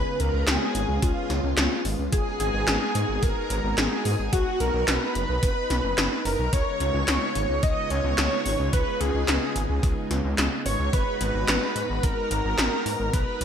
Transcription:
Already playing: analog synth pad C#3 G#3 B3 C#4 F4, string machine B4, analog synth lead B4
0.20 detuned saw bass C#2, string machine A#4, analog synth lead A#4, closed hi-hat
0.34 detuned saw bass C#2
0.47 detuned saw bass C#2, analog synth lead G#4, string machine G#4, snare, clap, closed hi-hat
0.75 detuned saw bass G#1, closed hi-hat
0.89 detuned saw bass C#2
1.02 detuned saw bass C#2, analog synth lead F4, string machine F4, kick, closed hi-hat
1.30 detuned saw bass C#2, snare, closed hi-hat
1.44 detuned saw bass C#2
1.57 detuned saw bass C#2, snare, clap, closed hi-hat
1.85 detuned saw bass G#1, open hi-hat
1.99 detuned saw bass C#2
2.12 detuned saw bass G#1, analog synth pad B3 D#4 F#4 A#4, string machine G#4, analog synth lead G#4, kick, closed hi-hat
2.40 detuned saw bass G#1, analog synth lead G#4, string machine G#4, closed hi-hat
2.54 detuned saw bass G#1
2.68 detuned saw bass G#1, snare, clap, closed hi-hat
2.95 detuned saw bass G#2, closed hi-hat
3.09 detuned saw bass G#1
3.23 detuned saw bass G#1, analog synth lead A#4, string machine A#4, kick, closed hi-hat
3.50 detuned saw bass G#1, closed hi-hat
3.64 detuned saw bass G#1
3.78 detuned saw bass G#1, string machine G#4, analog synth lead G#4, snare, clap, closed hi-hat
4.05 detuned saw bass G#2, open hi-hat
4.19 detuned saw bass G#1
4.33 detuned saw bass B1, analog synth pad B3, analog synth lead F#4, string machine F#4, kick, closed hi-hat
4.60 detuned saw bass B1, analog synth lead A#4, string machine A#4, closed hi-hat
4.74 detuned saw bass B1
4.88 detuned saw bass B1, analog synth lead B4, string machine B4, snare, clap, closed hi-hat
5.15 detuned saw bass F#1, closed hi-hat
5.29 detuned saw bass B1
5.43 detuned saw bass F#1, kick, closed hi-hat
5.70 detuned saw bass B1, snare, closed hi-hat
5.84 detuned saw bass F#1
5.98 detuned saw bass F#1, snare, clap, closed hi-hat
6.25 detuned saw bass F#1, analog synth lead A#4, string machine A#4, open hi-hat
6.39 detuned saw bass B1
6.53 detuned saw bass C#2, analog synth pad C#3 G#3 B3 F4, string machine C#5, analog synth lead C#5, kick, closed hi-hat
6.80 detuned saw bass C#2, closed hi-hat
6.94 detuned saw bass C#2
7.08 detuned saw bass C#2, snare, clap, closed hi-hat
7.35 detuned saw bass G#1, closed hi-hat
7.49 detuned saw bass C#2
7.63 detuned saw bass C#2, analog synth lead D#5, string machine D#5, kick, closed hi-hat
7.90 detuned saw bass C#2, analog synth lead C#5, string machine C#5, closed hi-hat
8.04 detuned saw bass C#2
8.18 detuned saw bass C#2, snare, clap, closed hi-hat
8.46 detuned saw bass G#1, open hi-hat
8.59 detuned saw bass C#2
8.73 detuned saw bass C#2, string machine B4, analog synth lead B4, kick, closed hi-hat
9.00 detuned saw bass C#2, analog synth lead G#4, string machine G#4, closed hi-hat
9.15 detuned saw bass C#2
9.28 detuned saw bass C#2, snare, clap, closed hi-hat
9.56 detuned saw bass G#1, closed hi-hat
9.69 detuned saw bass C#2
9.83 detuned saw bass C#2, kick, closed hi-hat
10.11 detuned saw bass C#2, snare, closed hi-hat
10.24 detuned saw bass C#2
10.38 detuned saw bass C#2, snare, clap, closed hi-hat
10.66 detuned saw bass G#1, string machine C#5, analog synth lead C#5, open hi-hat
10.79 detuned saw bass C#2
10.93 detuned saw bass G#1, analog synth pad B3 F#4 A#5, string machine B4, analog synth lead B4, kick, closed hi-hat
11.21 detuned saw bass G#1, closed hi-hat
11.35 detuned saw bass G#1
11.48 detuned saw bass G#1, snare, clap, closed hi-hat
11.76 detuned saw bass G#2, closed hi-hat
11.89 detuned saw bass G#1
12.03 detuned saw bass G#1, string machine A#4, analog synth lead A#4, kick, closed hi-hat
12.31 detuned saw bass G#1, closed hi-hat
12.45 detuned saw bass G#1
12.58 detuned saw bass G#1, snare, clap, closed hi-hat
12.86 detuned saw bass G#2, open hi-hat
13.00 detuned saw bass G#1
13.13 detuned saw bass B1, analog synth pad B3, analog synth lead B4, string machine B4, kick, closed hi-hat
13.41 detuned saw bass B1, closed hi-hat

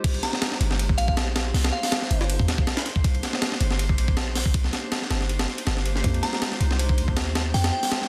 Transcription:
0.04 808-style bass C2, synth texture C5 C6, kick, crash, ride
0.14 ride
0.23 synth bell A#5, snare, ride
0.33 snare
0.42 snare, ride
0.52 snare
0.60 808-style bass G1, ride
0.71 snare
0.79 ride
0.89 kick
0.98 808-style bass A#1, synth bell F5, ride
1.08 synth bell F5, kick
1.17 snare, ride
1.36 snare, ride
1.54 808-style bass C2, snare, open hi-hat
1.64 snare, ride
1.72 synth bell F5
1.83 snare, open hi-hat
1.92 snare, ride
2.02 snare
2.11 808-style bass G1, ride
2.21 snare
2.30 ride
2.40 kick
2.48 snare, ride
2.58 kick
2.67 snare, ride
2.77 snare
2.86 snare, ride
2.96 kick
3.04 808-style bass C2, kick, ride
3.15 ride
3.23 snare, ride
3.33 snare
3.42 snare, ride
3.52 snare
3.60 808-style bass G1, ride
3.71 snare
3.79 ride
3.89 kick
3.98 808-style bass A#1, ride
4.08 kick
4.17 snare, ride
4.35 snare, open hi-hat
4.46 kick
4.54 808-style bass C2, kick, ride
4.64 snare
4.73 snare, ride
4.92 snare, ride
5.02 snare
5.10 808-style bass G1, snare, ride
5.21 snare
5.29 ride
5.39 snare, ride
5.48 ambient pad A#3 D4 D#4 G4 C5, snare
5.58 ride
5.67 808-style bass G1, snare, ride
5.77 snare
5.86 ride
5.96 snare
6.04 808-style bass F2, kick, ride
6.14 ride
6.23 synth bell A#5, snare, ride
6.33 snare
6.42 snare, ride
6.52 snare
6.60 808-style bass C2, ride
6.71 snare
6.79 ride
6.89 kick
6.98 808-style bass D#2, ride
7.08 kick
7.17 snare, ride
7.35 snare, ride
7.54 808-style bass F2, synth bell G5, snare, open hi-hat
7.64 synth bell G5, snare, ride
7.73 synth bell G5
7.83 snare, open hi-hat
7.92 snare, ride
8.02 snare

